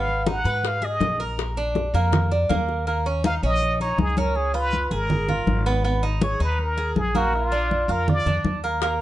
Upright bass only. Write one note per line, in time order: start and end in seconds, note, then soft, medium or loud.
0.00 0.40 G#1 medium
0.44 0.97 G#2 loud
1.00 1.88 A#1 loud
1.94 2.46 F2 loud
2.50 3.37 D#2 medium
3.43 3.95 A#1 loud
3.98 4.85 C#2 medium
4.91 5.43 G#1 loud
5.47 6.34 G#1 medium
6.40 6.92 D#2 medium
6.96 7.83 A#1 medium
7.88 8.23 F2 loud
8.26 8.43 F2 medium
8.44 9.01 D#2 medium